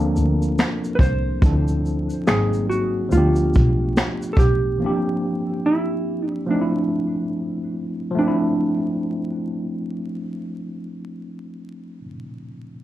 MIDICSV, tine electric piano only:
0, 0, Header, 1, 2, 480
1, 0, Start_track
1, 0, Key_signature, -1, "minor"
1, 0, Tempo, 845070
1, 809, Time_signature, 4, 2, 24, 8
1, 7291, End_track
2, 0, Start_track
2, 0, Title_t, "Tine electric piano"
2, 0, Program_c, 0, 4
2, 0, Control_c, 0, 64, 127
2, 0, Note_on_c, 0, 53, 83
2, 0, Note_on_c, 0, 58, 78
2, 0, Note_on_c, 0, 60, 68
2, 0, Note_on_c, 0, 62, 83
2, 0, Note_on_c, 0, 65, 59
2, 0, Note_on_c, 0, 69, 89
2, 0, Note_on_c, 0, 70, 69
2, 783, Note_off_c, 0, 53, 0
2, 789, Note_off_c, 0, 58, 0
2, 795, Note_off_c, 0, 60, 0
2, 801, Note_off_c, 0, 62, 0
2, 806, Note_on_c, 0, 53, 66
2, 807, Note_off_c, 0, 69, 0
2, 812, Note_on_c, 0, 60, 59
2, 816, Control_c, 0, 64, 0
2, 817, Note_off_c, 0, 70, 0
2, 818, Note_on_c, 0, 62, 68
2, 819, Note_off_c, 0, 65, 0
2, 824, Note_on_c, 0, 64, 61
2, 831, Note_on_c, 0, 69, 74
2, 916, Control_c, 0, 64, 127
2, 1287, Note_off_c, 0, 53, 0
2, 1287, Note_on_c, 0, 54, 62
2, 1290, Note_off_c, 0, 60, 0
2, 1293, Note_off_c, 0, 62, 0
2, 1293, Note_on_c, 0, 58, 54
2, 1296, Note_off_c, 0, 64, 0
2, 1296, Control_c, 0, 64, 0
2, 1299, Note_on_c, 0, 60, 62
2, 1300, Note_off_c, 0, 69, 0
2, 1305, Note_on_c, 0, 63, 57
2, 1310, Note_on_c, 0, 68, 64
2, 1378, Control_c, 0, 64, 127
2, 1753, Note_on_c, 0, 53, 69
2, 1765, Note_on_c, 0, 57, 64
2, 1768, Note_off_c, 0, 54, 0
2, 1771, Note_off_c, 0, 58, 0
2, 1774, Note_off_c, 0, 60, 0
2, 1777, Note_off_c, 0, 63, 0
2, 1777, Control_c, 0, 64, 0
2, 1777, Note_on_c, 0, 59, 63
2, 1779, Note_off_c, 0, 68, 0
2, 1790, Note_on_c, 0, 62, 65
2, 1803, Note_on_c, 0, 67, 74
2, 1862, Control_c, 0, 64, 127
2, 2702, Note_off_c, 0, 53, 0
2, 2708, Note_off_c, 0, 57, 0
2, 2713, Note_on_c, 0, 52, 57
2, 2714, Note_off_c, 0, 59, 0
2, 2720, Note_off_c, 0, 62, 0
2, 2725, Note_on_c, 0, 58, 61
2, 2727, Note_off_c, 0, 67, 0
2, 2735, Control_c, 0, 64, 0
2, 2736, Note_on_c, 0, 60, 61
2, 2749, Note_on_c, 0, 62, 63
2, 2750, Note_on_c, 0, 53, 75
2, 2761, Note_on_c, 0, 67, 79
2, 2764, Note_off_c, 0, 52, 0
2, 2824, Control_c, 0, 64, 127
2, 3665, Note_off_c, 0, 53, 0
2, 3668, Note_off_c, 0, 58, 0
2, 3672, Note_on_c, 0, 53, 67
2, 3673, Note_off_c, 0, 60, 0
2, 3680, Note_off_c, 0, 62, 0
2, 3685, Note_on_c, 0, 57, 69
2, 3686, Note_off_c, 0, 67, 0
2, 3695, Control_c, 0, 64, 0
2, 3696, Note_on_c, 0, 60, 62
2, 3709, Note_on_c, 0, 62, 60
2, 3720, Note_on_c, 0, 63, 60
2, 3748, Note_off_c, 0, 63, 0
2, 3757, Note_on_c, 0, 64, 80
2, 3810, Control_c, 0, 64, 127
2, 4599, Note_off_c, 0, 53, 0
2, 4606, Note_on_c, 0, 53, 82
2, 4622, Note_off_c, 0, 57, 0
2, 4629, Note_on_c, 0, 57, 79
2, 4633, Note_off_c, 0, 60, 0
2, 4640, Note_off_c, 0, 62, 0
2, 4654, Note_on_c, 0, 60, 78
2, 4656, Control_c, 0, 64, 0
2, 4664, Note_off_c, 0, 64, 0
2, 4678, Note_on_c, 0, 62, 72
2, 4702, Note_on_c, 0, 64, 89
2, 4747, Control_c, 0, 64, 127
2, 6813, Note_off_c, 0, 53, 0
2, 6837, Note_off_c, 0, 57, 0
2, 6861, Note_off_c, 0, 60, 0
2, 6885, Note_off_c, 0, 62, 0
2, 6910, Note_off_c, 0, 64, 0
2, 7291, End_track
0, 0, End_of_file